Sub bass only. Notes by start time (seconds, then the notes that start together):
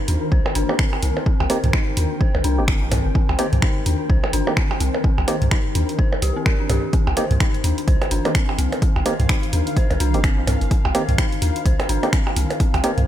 0.08 D#2
0.32 C2
0.55 G1
1.03 C2
1.40 C2
1.64 C2
1.97 D#2
2.35 C2
2.44 C2
2.58 G1
2.82 A#1
2.91 C2
3.05 G1
3.29 C2
3.53 C2
3.86 D#2
4.10 C2
4.33 G1
4.80 C2
5.18 C2
5.42 C2
5.75 D#2
6.22 C2
6.70 C2
7.07 C2
7.31 C2
7.64 D#2
7.88 C2
8.11 G1
8.58 C2
8.96 C2
9.20 C2
9.53 D#2
9.91 C2
10.00 C2
10.14 G1
10.38 A#1
10.47 C2
10.61 G1
10.85 C2
11.09 C2
11.42 D#2
11.66 C2
11.89 G1
12.36 C2
12.74 C2
12.98 C2